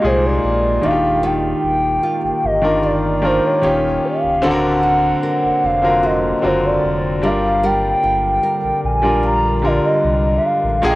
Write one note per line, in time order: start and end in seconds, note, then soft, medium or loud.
0.00 0.39 C2 medium
0.00 0.02 A#2 medium
0.00 0.83 A#2 medium
0.00 0.80 G#3 medium
0.00 0.91 G#3 medium
0.00 0.03 A#3 medium
0.00 0.80 A#3 medium
0.00 0.83 A#3 medium
0.00 0.04 D#4 loud
0.00 0.80 D#4 loud
0.00 1.23 D#4 medium
0.00 0.83 D#4 medium
0.00 0.85 G4 medium
0.00 0.05 G#4 loud
0.05 0.84 G#4 medium
0.05 0.27 C5 medium
0.26 0.87 D5 medium
0.44 0.79 A#1 medium
0.81 1.54 D#1 loud
0.81 2.17 D#3 medium
0.81 1.23 D#3 medium
0.81 4.40 D#3 medium
0.81 3.60 A#3 medium
0.81 2.18 D4 medium
0.81 2.18 F4 medium
0.81 0.90 F#4 medium
0.81 4.40 G4 medium
0.81 1.24 F5 medium
0.91 2.22 G4 medium
1.23 3.62 D#3 medium
1.23 2.03 F4 medium
1.23 2.46 G5 loud
1.64 1.99 D#1 loud
2.03 4.83 F4 medium
2.24 2.31 G1 soft
2.44 3.39 G1 medium
2.44 2.84 D#5 loud
2.62 3.13 D#3 medium
2.62 3.13 D4 medium
2.62 3.14 F4 medium
2.62 3.14 A#4 medium
2.83 3.71 D4 medium
2.83 3.27 D5 loud
3.22 3.60 D#3 medium
3.22 3.63 D4 medium
3.22 3.62 F4 medium
3.22 3.64 A#4 medium
3.22 3.47 C5 medium
3.45 4.07 C#5 medium
3.62 3.99 D#1 loud
3.62 4.30 D#3 medium
3.62 4.43 D#3 medium
3.62 4.30 C#4 medium
3.62 4.31 F4 medium
3.62 4.31 G4 medium
4.05 4.44 F5 loud
4.24 4.41 C#1 medium
4.42 5.14 D1 loud
4.42 5.60 D3 loud
4.42 7.93 D3 medium
4.42 7.20 D3 medium
4.42 7.20 F#3 medium
4.42 7.20 A#3 medium
4.42 5.61 C4 medium
4.42 7.20 C4 medium
4.42 5.61 D4 medium
4.42 5.61 F#4 medium
4.42 4.50 A4 medium
4.42 5.23 A#4 medium
4.42 5.67 F#5 loud
4.51 5.65 A#4 loud
4.83 6.02 F#4 medium
5.23 7.64 A#4 medium
5.44 5.52 F1 soft
5.64 6.34 F1 loud
5.64 6.07 F5 loud
5.82 6.33 D3 medium
5.82 6.33 C4 medium
5.82 6.34 F4 medium
5.82 6.34 F#4 medium
5.82 6.34 A#4 medium
6.03 7.31 F#4 medium
6.03 6.44 D#5 loud
6.42 6.79 F#1 medium
6.42 7.22 D3 medium
6.42 7.23 C4 medium
6.42 7.22 F4 medium
6.42 7.23 F#4 medium
6.42 7.23 A#4 medium
6.42 6.67 C5 loud
6.65 7.27 D5 loud
6.84 7.25 F1 loud
7.22 7.94 G1 loud
7.22 10.80 D3 medium
7.22 8.57 G3 medium
7.22 7.62 G3 medium
7.22 10.80 G3 medium
7.22 8.58 D4 medium
7.22 8.58 F4 medium
7.22 10.80 A#4 medium
7.22 8.59 A#4 medium
7.22 7.64 F5 loud
7.63 10.83 G3 medium
7.63 8.43 A#4 medium
7.63 8.80 G5 loud
8.03 8.39 G1 loud
8.03 9.23 F4 medium
8.43 10.95 A#4 medium
8.64 8.72 A#1 soft
8.84 9.79 A#1 loud
8.84 9.27 G#5 loud
9.02 9.53 G3 medium
9.02 9.54 D4 medium
9.02 9.54 F4 medium
9.02 9.54 A#4 medium
9.23 10.83 F4 medium
9.23 9.67 A#5 loud
9.62 10.64 D3 medium
9.62 10.64 G3 medium
9.62 10.65 F4 medium
9.62 10.65 A#4 medium
9.62 9.87 D5 loud
9.85 10.37 D#5 loud
10.04 10.39 C2 medium
10.38 10.47 E5 medium
10.45 10.87 F5 loud
10.64 10.81 A1 medium
10.82 10.95 A#1 loud
10.82 10.95 A#2 loud
10.82 10.95 A#2 medium
10.82 10.95 G#3 medium
10.82 10.95 A#3 medium
10.82 10.90 D4 medium
10.82 10.95 D#4 medium
10.82 10.95 F4 medium
10.82 10.95 G#4 loud
10.82 10.95 G5 loud
10.90 10.95 D#4 medium